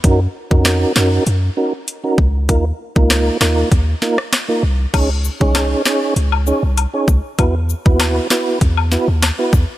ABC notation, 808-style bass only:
X:1
M:4/4
L:1/16
Q:1/4=98
K:Ebdor
V:1 name="808-style bass" clef=bass
G,,2 z F,,3 G,,2 G,,2 z4 D,,2 | E,,2 z D,,3 E,,2 E,,2 z4 C,,2 | D,,3 C,,3 z2 D,,3 C,,2 z D,, z | =E,,3 _E,,3 z2 =E,,3 _E,,2 z =E,, z |]